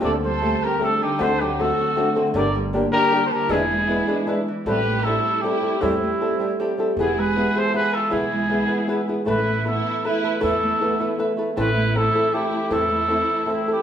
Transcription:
Already playing: A#3 D#4 F4
0.00 D2 D3 A3 C4 G4 A4 D5
0.04 D3 A4
0.24 G3 A4 C5
0.41 A3 C4 G4 A4
0.63 C4 G4 A#4
0.79 A3 C4 G4 A4
0.83 D4 A4
1.03 D3 D#4 G4
1.18 D2 D3 A3 C4 F#4 A4
1.23 D3 C5
1.40 F#3 D#4 G4
1.59 A3 C4 F#4 A4
1.79 C4
1.96 A3 C4 D4 F#4 A4
2.15 D3 A3 C4 F#4 A4
2.34 G1 D3 G3 D4 G4 A#4 D5
2.55 G3
2.73 G3 A#3 D4 G4 A#4
2.92 G3 D4 G4 A#4
3.12 G3 D4 G4 A#4 D5
3.26 A4 C5
3.32 D3 G4 A#4
3.49 E1 E3 G#3 D4 E4 G#4 B4
3.71 G#3
3.88 G#3 B3 D4 E4 B4
4.07 G#3 D4 E4 B4
4.27 G#3 D4 E4 B4
4.48 E3
4.66 A1 A2 E3 G3 C4 E4 G4 A4 B4
4.87 A3
5.03 G3 C4 E4 A4
5.27 E4
5.41 G3 C4 E4 G4 A4
5.45 G4
5.61 G3 C4 E4 A4
5.81 E2 A2 E3 G3 C4 E4 A4
6.03 A3
6.20 G3 C4 E4 A4
6.39 G3 C4 E4 A4
6.59 G3 C4 E4 G4 A4
6.77 G3 C4 E4 A4
6.97 E1 E3 B3 E4 G#4 B4
7.01 E4 G#4
7.17 G#3 G#4 B4
7.36 B3 E4 G#4 B4
7.55 B3 E4 G#4 A4 B4 C5
7.74 B3 E4 G#4 B4 E5
7.94 F4 A4
8.10 B1 E3 B3 E4 G#4 B4
8.32 G#3
8.49 B3 E4 G#4 B4
8.66 B3 E4 G#4 B4
8.70 E4
8.87 B3 E4 G#4 B4 E5
9.07 B3 E4 G#4 B4
9.25 A1 A2 E3 A3 E4 A4 B4
9.29 E4
9.48 A3
9.64 A3 B3 E4 A4 B4
9.86 E4
10.04 A3 E4 A4 B4 E5
10.23 A3 E4 A4 B4
10.40 E2 A2 E3 A3 E4 A4 B4
10.44 E4
10.63 A3
10.80 A3 B3 E4 A4 B4
10.99 A3 E4 A4 B4
11.18 A3 E4 A4 B4 E5
11.37 A3 E4 A4 B4
11.57 A1 A2 E3 A3 C4 E4 A4 B4
11.76 A3
11.95 A3 C4 E4 A4
12.13 A3 C4 E4 A4
12.32 A3 C4 E4 G4 A4 E5
12.51 A3 C4 E4 A4
12.70 E2 A2 E3 A3 C4 E4 A4
12.91 A3
13.08 A3 C4 E4 A4
13.31 E4
13.46 A3 C4 E4 A4 E5
13.51 C4 E4
13.66 A3 C4 E4 A4
13.71 E4 G4

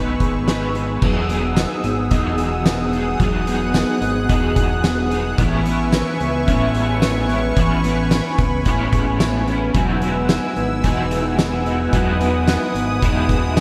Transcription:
Already playing: B1 D#3 G#3 B3 D#4 G#4 B4 G#5 C#6 E6
0.20 G#1 G#4, kick, closed hi-hat
0.47 G#3 B3 D#4, snare, closed hi-hat
0.52 B4
0.75 G#4, closed hi-hat
1.01 E1 E2 E3 F#3 B3 D#4 G#4 F#5 D#6 E6, kick, crash
1.28 B3 D#4 G#4, closed hi-hat
1.33 F#3
1.56 D#4, snare, closed hi-hat, tambourine
1.84 G#1 B3, closed hi-hat
2.11 E1 E2 E3 F#3 B3 D#4 G#4, kick, closed hi-hat
2.38 G#4, closed hi-hat
2.65 B3, snare, closed hi-hat, tambourine
2.91 B3 D#4 G#4, closed hi-hat
2.97 F#3
3.19 E1 E2 E3 F#3 B3 D#4 G#4 F#6, kick, closed hi-hat
3.46 B3 D#4 G#4, closed hi-hat
3.51 F#3
3.74 D#4, snare, closed hi-hat, tambourine
4.01 G#1 B3, closed hi-hat
4.28 E1 E2 E3 F#3 B3 D#4 G#4, kick, closed hi-hat
4.56 G#4, kick, closed hi-hat
4.84 B3, snare, closed hi-hat, tambourine
5.10 B3 D#4 G#4, closed hi-hat
5.15 F#3
5.37 A1 A2 E3 G#3 B3 C#4 E4 B4 E5 G#5 C#6, kick, closed hi-hat
5.64 B3 E4, closed hi-hat
5.69 C#4
5.92 C#4, snare, closed hi-hat, tambourine
6.20 C#2 B3, closed hi-hat
6.47 A1 A2 G#3 B3 C#4 E4, kick, closed hi-hat
6.75 G#4, closed hi-hat
7.02 B3, snare, closed hi-hat, tambourine
7.28 B3 C#4 E4, closed hi-hat
7.33 C#4
7.56 A1 A2 E3 G#3 B3 C#4 E4 B5, kick, closed hi-hat
7.83 B3 E4, closed hi-hat
7.88 C#4
8.11 C#4, snare, closed hi-hat, tambourine
8.38 C#2 B3, kick, closed hi-hat
8.65 A1 A2 G#3 B3 C#4 E4, kick, closed hi-hat
8.93 G#4, kick, closed hi-hat
9.20 B3, snare, closed hi-hat, tambourine
9.47 B3 C#4 E4, closed hi-hat
9.52 C#4
9.74 E1 E2 E3 F#3 G#3 D#4 E4 F#4 B4 F#5 E6, kick, closed hi-hat
10.01 B3 D#4 E4 F#4, closed hi-hat
10.06 G#3
10.29 D#4, snare, closed hi-hat, tambourine
10.56 G#1 B3, closed hi-hat
10.83 E1 E2 E3 G#3 D#4 E4 F#4, kick, closed hi-hat
11.11 G#4, closed hi-hat
11.39 B3, snare, closed hi-hat, tambourine
11.65 D#4 E4 F#4, closed hi-hat
11.70 G#3
11.92 E1 E2 E3 F#3 G#3 D#4 E4 F#4 D#6, kick, closed hi-hat
12.19 B3 D#4 E4 F#4, closed hi-hat
12.24 G#3
12.47 D#4, snare, closed hi-hat, tambourine
12.75 G#1 B3, closed hi-hat
13.01 E1 E2 E3 G#3 D#4 E4 F#4, kick, closed hi-hat
13.29 G#4, kick, closed hi-hat
13.57 B3, snare, closed hi-hat, tambourine

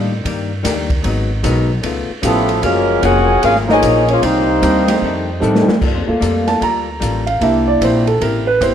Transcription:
Already playing: A2 D#3 G3 A#3 D4
0.24 G2 D#3 G3 A#3 D4, kick, ride
0.63 D#2 D#3 G3 A#3 D4, kick, snare, hi-hat pedal, ride
0.90 kick, ride
1.02 G#1 G#2 F#3 B3 D#4, kick, ride
1.43 B1 G#2 F#3 G#3 B3 D#4 F#4 A#4, kick, hi-hat pedal, ride
1.82 C#2 C#3 A3 B3 F4, kick, ride
2.09 muted upright bass stroke
2.22 A1 B2 C#3 F3 A3 B3 C#4 E4 F4 G4 A4, kick, hi-hat pedal, ride
2.49 ride
2.62 F#1 C#3 F3 F#3 G#3 A#3 C#4 F4 G#4 A#4, kick, ride
3.01 F1 F#3 A#3 C#4 F4 F#4 G#4 A#4 F#5, kick, hi-hat pedal, ride
3.42 G#1 F#3 A#3 C#4 F4 G#4 A#4 F5, kick, ride
3.56 snare
3.67 F3 A#3 D#4, snare
3.71 C#4 G#4 A#4 D#5
3.81 A#1 F#3 A#3 F4 G#4, kick, hi-hat pedal, ride
4.07 F3 A#3 C#4 G#4, ride
4.11 F4 C#5
4.21 C2 C3 D#3 G3 A#3 C4 D4 D#4 G4 C5, kick, ride
4.61 D2 C3 D#3 G3 A#3 C4 D4 D#4 A#4, kick, hi-hat pedal, ride
4.88 snare, ride
5.01 F2 D#3 A3 D4, kick
5.40 F2 A2 D#3 G3 A3 C4 D4 D#4 A4, hi-hat pedal
5.44 D4
5.55 snare
5.67 muted upright bass stroke, snare
5.80 G2 G3 A#3 F4 A4, kick, crash
5.94 F2
6.07 D2 A3 A#3 F4
6.20 F2 G3 A#3 F4 A4, kick, hi-hat pedal, ride
6.47 A5, snare, ride
6.60 D2 G3 A#3 F4 A4 A#5, kick, ride
7.00 A1 G3 A#3 F4 A4, kick, hi-hat pedal, ride
7.27 F5, ride
7.40 C2 C3 A#3 D4 E4 G4 E5, kick, ride
7.68 D5
7.81 A#1 C3 A#3 E4 G4 C5, kick, hi-hat pedal, ride
8.07 A4, ride
8.21 A1 C3 A#3 E4 G4 A#4, kick, ride
8.47 B4
8.60 G1 C3 A#3 E4 G4 C5, kick, hi-hat pedal, ride

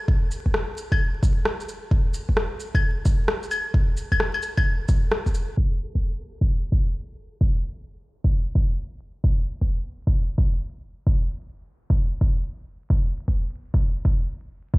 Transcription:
0.08 kick
0.31 shaker
0.46 kick
0.54 cross-stick
0.77 shaker
0.92 kick, claves
1.23 kick, shaker
1.45 cross-stick
1.60 shaker
1.69 shaker
1.91 kick
2.14 shaker
2.29 kick
2.37 cross-stick
2.60 shaker
2.75 kick, claves
3.05 kick, shaker
3.28 cross-stick
3.43 shaker
3.51 claves, shaker
3.74 kick
3.97 shaker
4.12 kick, claves
4.20 cross-stick
4.34 claves
4.42 shaker
4.57 kick, claves
4.88 kick, shaker
5.11 cross-stick
5.26 kick, shaker
5.34 shaker
5.57 kick
5.95 kick
6.41 kick
6.72 kick
7.41 kick
8.24 kick
8.55 kick
9.24 kick
9.61 kick
10.07 kick
10.38 kick
11.07 kick
11.90 kick
12.21 kick
12.90 kick
13.28 kick
13.74 kick
14.05 kick
14.74 kick

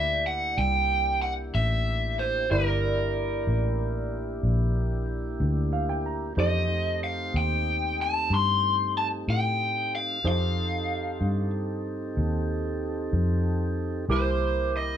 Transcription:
Already playing: D2 A#3 D4 E4 G4 A#4 D5 E5
0.27 F#5
0.58 C2 G5
1.22 F#5
1.55 A1 E5
2.19 C5
2.49 G1 A#3 D4 E4 G4 A#4 D5
3.47 A1
4.43 A#1
5.40 D2
5.73 F5
5.89 G5
6.06 A#5
6.35 F2 E3 A#3 C#4 D#4 G4 A4 C5
6.40 D#5
6.67 A3 C4 D#4 G4
7.04 F5
7.34 D#2 G5
8.02 A5
8.30 G2
8.34 C6
8.98 A5
9.28 A2 G5
9.95 F5
10.23 F2 C4 D#4 G4 A4 C5
10.28 F5
11.21 G2
12.17 D#2
13.13 F2
14.09 C2 D3 A#3 E4 G4 A#4 C5 D6
14.77 D#5

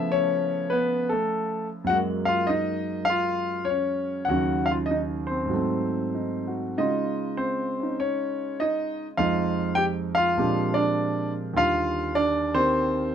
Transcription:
Already playing: C#3 F3 A3 B3 E4 E5
0.12 C#4 C#5
0.70 B3 B4
1.09 A3 A4
1.84 F#2 F#5
1.89 F#3 G#3 F#4
1.96 A#3
2.25 F4 F5
2.47 D#4 D#5
3.05 F5
3.10 F4
3.65 C#5
3.70 C#4
4.25 D#2 F#5
4.30 C#3 D#3 F#3 F#4
4.66 F5
4.71 F4
4.86 D#5
4.91 D#4
5.27 C5
5.31 C4
5.46 G#2
5.50 F#3 A3
5.56 C4
6.14 D#4
6.48 F#4
6.78 C#3 G#3 D#4 F4 D#5
7.37 C4 C5
7.80 C#4 D#4
8.00 C#4 C#5
8.60 D#4 D#5
9.17 F2 F3 G#3 D#4 F4 F5
9.75 G4 G5
10.15 F4 F5
10.37 A#2 F3 G#3 C4 D4 G4
10.74 D4 D5
11.54 D#2 D3 G3 F4 F5
12.15 D4 D5
12.54 D#3 A#3 C4 G4 C5

